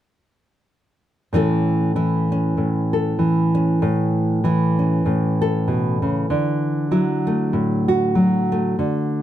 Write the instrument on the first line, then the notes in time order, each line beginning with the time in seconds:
nylon-string guitar
1.33 A2 E3 C#4 E4 A4
1.96 E3 E4
2.32 C#4
2.57 A2
2.93 A4
3.19 E3
3.55 C#4
3.82 A2
4.44 E3 E4
4.79 C#4
5.06 A2
5.42 A4
5.68 B2
6.02 C#3
6.30 D3
6.91 F#3 E4
7.27 A3
7.53 A2
7.88 F#4
8.15 F#3
8.52 A3
8.79 D3